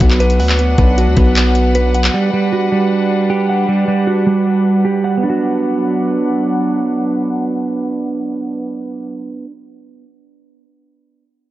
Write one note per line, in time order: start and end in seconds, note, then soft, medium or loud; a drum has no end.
0.00 0.41 B1 loud
0.00 2.11 F#3 medium
0.00 0.58 B3 medium
0.00 2.11 D4 medium
0.00 0.59 F#4 medium
0.00 5.20 B4 medium
0.00 5.20 F#5 medium
0.00 kick loud
0.00 closed hi-hat medium
0.11 clap medium
0.20 1.36 B4 loud
0.20 closed hi-hat medium
0.30 closed hi-hat medium
0.40 0.76 D2 loud
0.40 1.56 F#5 medium
0.40 open hi-hat medium
0.49 clap medium
0.59 0.77 B3 medium
0.59 closed hi-hat medium
0.78 1.09 B1 loud
0.78 1.16 B3 medium
0.78 kick medium
0.78 closed hi-hat medium
0.98 2.14 F#4 medium
0.98 closed hi-hat medium
1.07 1.17 D2 medium
1.17 2.10 B1 loud
1.17 2.14 B3 medium
1.17 kick loud
1.17 closed hi-hat medium
1.36 clap loud
1.36 closed hi-hat medium
1.55 closed hi-hat medium
1.75 2.14 B4 medium
1.75 closed hi-hat medium
1.95 2.14 F#5 medium
1.95 closed hi-hat medium
2.04 clap medium
2.14 5.20 G3 medium
2.14 2.32 G3 medium
2.14 5.20 D4 medium
2.33 2.71 G3 medium
2.53 3.69 F#4 medium
2.72 3.67 G3 medium
3.30 4.46 G4 loud
3.49 4.65 F#5 medium
3.69 3.87 G3 medium
3.88 4.25 G3 medium
4.07 5.23 F#4 medium
4.27 5.23 G3 medium
4.85 5.23 G4 medium
5.04 5.24 F#5 medium
5.17 9.45 B3 medium
5.23 9.09 F#3 medium
5.23 9.51 D4 medium
5.23 9.09 D4 medium
5.23 9.09 B4 medium
5.23 9.09 F#5 medium
5.29 9.57 F#4 medium